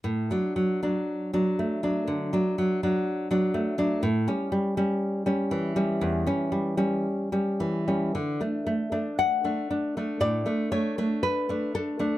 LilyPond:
\new Staff \with { instrumentName = "Nylon-string guitar" } { \time 4/4 \key d \major \tempo 4 = 59 << { r1 | r1 | r4 fis''4 d''8 cis''8 b'8 a'8 | } \\ { a,16 <fis d'>16 fis16 <fis d'>8 <fis d'>16 a16 <fis d'>16 d16 <fis d'>16 fis16 <fis d'>8 <fis d'>16 a16 <fis d'>16 | a,16 <g cis'>16 g16 <g cis'>8 <g cis'>16 e16 <g cis'>16 e,16 <g cis'>16 g16 <g cis'>8 <g cis'>16 e16 <g cis'>16 | d16 <a d'>16 a16 <a d'>8 <a d'>16 d'16 <a d'>16 a,16 <a d'>16 a16 <a d'>8 <a d'>16 d'16 <a d'>16 | } >> }